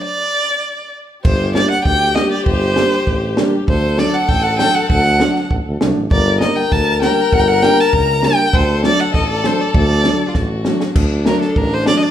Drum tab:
CC |--------|x-------|--------|--------|
SD |--------|--o---o-|-ooo--o-|--o---o-|
BD |--------|o---o---|o---o---|o---o---|

CC |--------|--------|--------|--------|
SD |--oo--o-|--o---o-|--o---o-|--o---o-|
BD |o---o---|o---o---|o---o---|o---o---|

CC |--------|x-------|
SD |--o-o-oo|--oo--o-|
BD |o---o---|o---o---|